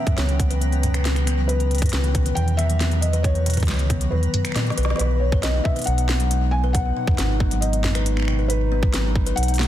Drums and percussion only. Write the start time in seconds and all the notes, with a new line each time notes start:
0.07 kick, closed hi-hat, mid tom
0.18 snare, closed hi-hat
0.29 closed hi-hat
0.40 kick, closed hi-hat
0.51 closed hi-hat
0.61 closed hi-hat
0.72 closed hi-hat
0.83 closed hi-hat, mid tom
0.94 finger snap, closed hi-hat
1.05 snare, closed hi-hat
1.16 finger snap, closed hi-hat
1.27 finger snap, closed hi-hat
1.49 closed hi-hat
1.60 closed hi-hat
1.71 closed hi-hat
1.75 closed hi-hat
1.78 kick, closed hi-hat
1.82 closed hi-hat, mid tom
1.86 closed hi-hat
1.89 snare, closed hi-hat
1.93 closed hi-hat
2.04 closed hi-hat
2.15 kick, closed hi-hat
2.26 closed hi-hat
2.37 closed hi-hat
2.48 closed hi-hat
2.59 finger snap, closed hi-hat
2.70 closed hi-hat
2.81 snare, closed hi-hat
2.91 closed hi-hat
3.02 closed hi-hat
3.13 closed hi-hat
3.24 kick, closed hi-hat
3.35 closed hi-hat
3.46 closed hi-hat
3.50 closed hi-hat
3.54 closed hi-hat
3.57 closed hi-hat, mid tom
3.60 kick, closed hi-hat
3.63 closed hi-hat
3.65 snare, closed hi-hat
3.68 closed hi-hat
3.71 closed hi-hat
3.74 closed hi-hat
3.76 closed hi-hat
3.79 closed hi-hat
3.90 kick, closed hi-hat
4.01 closed hi-hat
4.23 closed hi-hat
4.34 closed hi-hat, mid tom
4.45 finger snap, closed hi-hat
4.52 finger snap, snare, closed hi-hat
4.59 finger snap
4.67 snare, closed hi-hat
4.72 closed hi-hat
4.78 closed hi-hat
4.85 snare
4.90 snare
4.96 snare, closed hi-hat
5.01 snare
5.32 kick, mid tom
5.43 snare, closed hi-hat
5.65 kick
5.76 closed hi-hat
5.79 closed hi-hat
5.82 closed hi-hat
5.84 closed hi-hat
5.87 closed hi-hat
5.98 closed hi-hat
6.09 snare
6.20 closed hi-hat
6.31 closed hi-hat
6.75 kick, closed hi-hat
7.07 kick, mid tom
7.11 mid tom
7.15 snare, closed hi-hat, mid tom
7.18 mid tom
7.22 mid tom
7.26 mid tom
7.40 kick
7.51 closed hi-hat
7.62 closed hi-hat
7.73 closed hi-hat
7.84 snare, mid tom
7.95 finger snap, closed hi-hat
8.06 closed hi-hat
8.17 finger snap
8.20 finger snap
8.22 finger snap
8.25 finger snap
8.28 finger snap
8.50 closed hi-hat
8.83 kick, mid tom
8.94 snare, closed hi-hat
9.15 kick
9.26 closed hi-hat
9.37 closed hi-hat
9.43 closed hi-hat
9.48 closed hi-hat
9.54 closed hi-hat
9.56 finger snap, snare, closed hi-hat
9.63 closed hi-hat